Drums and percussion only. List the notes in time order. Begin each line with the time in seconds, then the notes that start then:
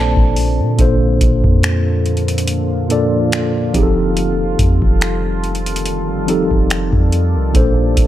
0.17 kick
0.36 open hi-hat
0.79 kick, closed hi-hat
1.21 kick, closed hi-hat
1.44 kick
1.63 finger snap, closed hi-hat
2.06 closed hi-hat
2.17 closed hi-hat
2.28 closed hi-hat
2.38 closed hi-hat
2.47 closed hi-hat
2.90 closed hi-hat
3.32 finger snap, closed hi-hat
3.74 kick, closed hi-hat
4.17 closed hi-hat
4.59 kick, closed hi-hat
4.82 kick
5.01 finger snap, closed hi-hat
5.44 closed hi-hat
5.55 closed hi-hat
5.66 closed hi-hat
5.76 closed hi-hat
5.86 closed hi-hat
6.28 closed hi-hat
6.51 kick
6.70 finger snap, closed hi-hat
6.93 kick
7.12 closed hi-hat
7.55 kick, closed hi-hat
7.97 kick, closed hi-hat